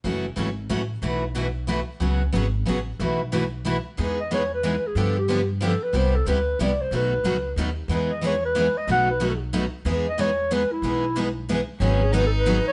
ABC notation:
X:1
M:3/4
L:1/8
Q:"Swing" 1/4=184
K:E
V:1 name="Clarinet"
z6 | z6 | z6 | z6 |
z d c B2 G | A =G2 z A B | =c A B2 =d c | B4 z2 |
z d c B2 d | f B2 z3 | z d c2 B E- | E4 z2 |
z G (3B A B- B c |]
V:2 name="Violin"
z6 | z6 | z6 | z6 |
z6 | z6 | z6 | z6 |
z6 | z6 | z6 | z6 |
C2 D4 |]
V:3 name="Steel-string acoustic guitar"
[C,E,A,CF] z [C,E,A,CF] z [C,E,A,CF] z | [B,,E,A,EF] z [B,,E,A,EF] z [B,,E,A,EF] z | [C,F,B,CF] z [C,F,B,CF] z [C,F,B,CF] z | [B,,E,A,EF] z [B,,E,A,EF] z [B,,E,A,EF] z |
[E,B,DG] z [E,B,DG] z [E,B,DG] z | [=D,=F,B,=D=G] z [D,F,B,DG] z [D,F,B,DG] z | [=C,=G,B,E=G] z [C,G,B,EG] z [C,G,B,EG] z | [B,,F,A,DF] z [B,,F,A,DF] z [B,,F,A,DF] z |
[E,B,DG] z [E,B,DG] z [E,B,DG] z | [B,,F,A,DF] z [B,,F,A,DF] z [B,,F,A,DF] z | [E,B,DG] z [E,B,DG] z [E,B,DG] z | [E,B,DG] z [E,B,DG] z [E,B,DG] z |
[D,F,B,DG] z [D,F,B,DG] z [D,F,B,DG] z |]
V:4 name="Steel-string acoustic guitar"
[F,CEA] z [F,CEA] z [F,CEA] z | [B,,E,A,EFB] z [B,,E,A,EFB] z [B,,E,A,EFB] z | [C,F,B,FG] z [C,F,B,FG] z [C,F,B,FG] z | [B,,E,A,EFB] z [B,,E,A,EFB] z [B,,E,A,EFB] z |
[E,G,B,DG] z [E,G,B,DG] z [E,G,B,DG] z | [=D,=F,B,=D=G] z [D,F,B,DG] z [D,F,B,DG] z | [=C,=G,B,E=G] z [C,G,B,EG] z [C,G,B,EG] z | [B,,D,F,B,DA] z [B,,D,F,B,DA] z [B,,D,F,B,DA] z |
[E,G,B,DG] z [E,G,B,DG] z [E,G,B,DG] z | [B,,D,F,B,DA] z [B,,D,F,B,DA] z [B,,D,F,B,DA] z | [E,G,B,DG] z [E,G,B,DG] z [E,G,B,DG] z | [E,G,B,DG] z [E,G,B,DG] z [E,G,B,DG] z |
[D,F,B,DG] z [D,F,B,DG] z [D,F,B,DG] z |]
V:5 name="Upright bass" clef=bass
F,,,2 G,,,2 A,,,2 | B,,,6 | C,,2 G,,,2 A,,,2 | B,,,6 |
E,,6 | =G,,6 | =C,,2 =D,,2 C,,2 | B,,,2 C,,2 D,,2 |
E,,6 | B,,,6 | E,,6 | B,,,6 |
G,,,6 |]